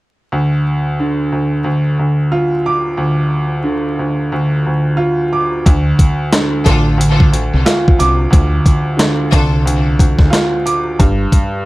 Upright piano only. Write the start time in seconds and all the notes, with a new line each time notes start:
0.32 D2
1.00 D3
1.32 D2
1.64 D2
1.99 D2
2.32 F4
2.66 D6
2.97 D2
3.64 D3
3.99 D2
4.32 D2
4.66 D2
4.97 F4
5.33 D6
5.66 D2
6.33 D3
6.66 D2
6.98 D2
7.32 D2
7.65 F4
7.99 D6
8.30 D2
8.97 D3
9.32 D2
9.65 D2
9.99 D2
10.30 F4
10.66 D6
10.99 G2